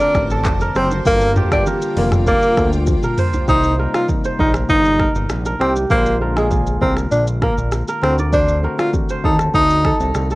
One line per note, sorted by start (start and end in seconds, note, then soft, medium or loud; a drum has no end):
0.00 1.04 D3 medium
0.00 1.08 A3 medium
0.00 1.08 C4 medium
0.00 0.28 D4 loud
0.00 1.03 F#4 medium
0.00 1.08 F#4 medium
0.00 0.40 A4 medium
0.00 0.37 A#4 medium
0.00 0.43 C5 medium
0.00 1.03 C5 medium
0.00 1.03 A5 medium
0.00 3.44 D6 medium
0.00 shaker medium
0.15 0.47 A1 medium
0.15 finger snap medium
0.15 kick medium
0.15 cross-stick medium
0.15 low bongo medium
0.15 shaker medium
0.30 0.68 A4 medium
0.30 shaker medium
0.45 0.71 F1 loud
0.45 finger snap medium
0.45 kick loud
0.45 cross-stick loud
0.45 clap medium
0.45 high bongo medium
0.45 shaker medium
0.60 1.06 A#4 medium
0.60 shaker medium
0.75 1.01 F#1 medium
0.75 0.89 C4 medium
0.75 1.95 C5 medium
0.75 finger snap medium
0.75 cross-stick loud
0.75 shaker medium
0.91 low bongo medium
0.91 shaker medium
1.04 1.45 G1 loud
1.04 1.27 D3 medium
1.04 1.27 G3 medium
1.04 1.28 A#3 medium
1.04 1.32 A#3 loud
1.04 3.46 F4 medium
1.04 1.28 F4 medium
1.04 3.46 A#4 medium
1.04 1.67 A#4 medium
1.04 3.46 G5 medium
1.04 kick loud
1.04 low conga medium
1.04 shaker medium
1.21 shaker medium
1.35 1.78 D3 medium
1.35 1.79 G3 medium
1.35 1.79 A#3 medium
1.35 1.80 F4 medium
1.35 1.52 G4 medium
1.35 mid tom loud
1.35 low bongo medium
1.35 shaker medium
1.52 1.64 G1 medium
1.52 1.65 D4 medium
1.52 2.94 G4 medium
1.52 finger snap medium
1.52 kick loud
1.52 cross-stick loud
1.52 shaker medium
1.66 2.94 A#4 medium
1.66 high bongo medium
1.66 low conga medium
1.66 shaker medium
1.82 shaker medium
1.95 2.35 F1 loud
1.95 2.81 D3 medium
1.95 2.82 G3 medium
1.95 2.82 A#3 medium
1.95 2.11 A#3 medium
1.95 2.82 F4 medium
1.95 open hi-hat medium
1.95 low conga medium
2.12 finger snap medium
2.12 cross-stick medium
2.12 mid tom loud
2.12 shaker medium
2.27 2.71 A#3 loud
2.27 3.39 D5 medium
2.27 kick medium
2.27 shaker medium
2.42 shaker medium
2.57 2.96 D2 medium
2.57 finger snap medium
2.57 kick medium
2.57 cross-stick medium
2.57 high bongo medium
2.57 low bongo medium
2.57 shaker medium
2.73 shaker medium
2.87 kick loud
2.87 high tom medium
2.87 high bongo medium
2.87 shaker medium
3.03 3.79 A#4 medium
3.03 mid tom medium
3.03 high bongo medium
3.03 shaker medium
3.18 3.48 C5 medium
3.18 mid tom loud
3.18 open hi-hat medium
3.18 shaker medium
3.33 floor tom loud
3.33 low bongo medium
3.33 shaker medium
3.47 3.87 C2 loud
3.47 3.69 C3 medium
3.47 3.70 G3 medium
3.47 3.70 A#3 medium
3.47 3.74 D#4 medium
3.47 3.70 D#4 medium
3.47 4.25 C5 medium
3.47 kick loud
3.47 low conga medium
3.47 shaker medium
3.63 shaker medium
3.77 4.63 C3 medium
3.77 4.64 G3 medium
3.77 4.64 A#3 medium
3.77 4.64 D#4 medium
3.77 4.40 A#4 medium
3.77 low bongo medium
3.94 4.07 F4 medium
3.94 finger snap medium
3.94 cross-stick loud
3.94 low bongo medium
3.94 shaker medium
4.08 kick loud
4.08 high bongo medium
4.08 low conga medium
4.08 shaker medium
4.24 5.44 C5 medium
4.24 shaker medium
4.39 4.65 A#1 loud
4.39 4.53 D#4 medium
4.39 5.00 A#4 medium
4.39 kick loud
4.39 low conga medium
4.54 finger snap medium
4.54 cross-stick medium
4.54 shaker medium
4.69 5.08 G1 loud
4.69 5.13 D#4 loud
4.69 kick medium
4.69 shaker medium
4.85 shaker medium
5.00 5.46 A#4 medium
5.00 finger snap medium
5.00 kick medium
5.00 cross-stick medium
5.00 low bongo medium
5.15 5.28 G1 medium
5.15 shaker soft
5.30 5.56 A#1 medium
5.30 finger snap medium
5.30 cross-stick medium
5.30 high bongo medium
5.30 shaker medium
5.46 6.21 A#4 medium
5.46 high bongo medium
5.46 shaker medium
5.60 5.86 C2 medium
5.60 5.74 C4 medium
5.60 6.43 G4 medium
5.60 finger snap medium
5.60 cross-stick medium
5.76 low bongo medium
5.76 shaker medium
5.89 6.77 A#1 loud
5.89 6.11 D3 medium
5.89 6.12 G#3 medium
5.89 6.16 A#3 loud
5.89 6.12 A#3 medium
5.89 6.13 F4 medium
5.89 7.10 C5 medium
5.89 kick loud
5.89 low conga medium
5.89 shaker medium
6.06 shaker medium
6.19 7.05 D3 medium
6.19 7.06 G#3 medium
6.19 7.06 A#3 medium
6.19 7.07 F4 medium
6.19 6.82 A#4 medium
6.19 low bongo medium
6.36 6.49 G#3 medium
6.36 7.74 G#4 medium
6.36 finger snap medium
6.36 cross-stick loud
6.36 low bongo medium
6.36 shaker medium
6.51 kick loud
6.51 high bongo medium
6.51 low conga medium
6.51 shaker medium
6.67 shaker medium
6.81 7.07 C2 medium
6.81 6.95 C4 medium
6.81 7.42 A#4 medium
6.81 kick loud
6.81 low conga medium
6.97 finger snap medium
6.97 cross-stick medium
6.97 shaker medium
7.12 7.51 A#1 medium
7.12 7.25 D4 medium
7.12 shaker medium
7.27 shaker medium
7.42 7.56 A#3 medium
7.42 7.88 A#4 medium
7.42 finger snap medium
7.42 kick medium
7.42 cross-stick medium
7.42 low bongo medium
7.58 7.83 A#1 medium
7.58 shaker medium
7.72 finger snap medium
7.72 cross-stick medium
7.72 high bongo medium
7.72 shaker medium
7.88 8.64 A#4 medium
7.88 high bongo medium
7.88 shaker medium
8.01 8.67 D2 loud
8.01 8.51 D3 medium
8.01 8.51 A3 medium
8.01 8.16 C4 medium
8.01 8.52 C4 medium
8.01 8.10 E4 medium
8.01 finger snap medium
8.01 cross-stick medium
8.10 8.55 F#4 medium
8.18 9.30 D5 medium
8.18 low bongo medium
8.18 shaker medium
8.33 8.59 D4 medium
8.33 9.10 C5 medium
8.33 kick loud
8.33 low conga medium
8.33 shaker medium
8.48 shaker medium
8.62 9.48 D3 medium
8.62 9.48 A3 medium
8.62 9.49 C4 medium
8.62 9.49 F#4 medium
8.62 9.31 A#4 medium
8.62 low bongo medium
8.79 8.91 F4 medium
8.79 finger snap medium
8.79 cross-stick loud
8.79 low bongo medium
8.79 shaker medium
8.93 kick loud
8.93 high bongo medium
8.93 low conga medium
8.93 shaker medium
9.09 10.29 C5 medium
9.09 shaker medium
9.24 9.50 D#2 medium
9.24 9.38 D#4 medium
9.24 9.85 A4 medium
9.24 kick medium
9.24 low conga medium
9.39 finger snap medium
9.39 cross-stick medium
9.39 shaker medium
9.54 9.93 D2 loud
9.54 9.98 D#4 loud
9.54 kick medium
9.54 shaker medium
9.70 shaker medium
9.84 10.31 A4 medium
9.84 finger snap medium
9.84 kick medium
9.84 cross-stick medium
9.84 low bongo medium
10.00 10.13 C2 loud
10.00 shaker medium
10.15 10.35 C2 loud
10.15 finger snap medium
10.15 cross-stick medium
10.15 high bongo medium
10.15 shaker medium
10.30 10.35 A4 medium
10.30 high bongo medium
10.30 shaker medium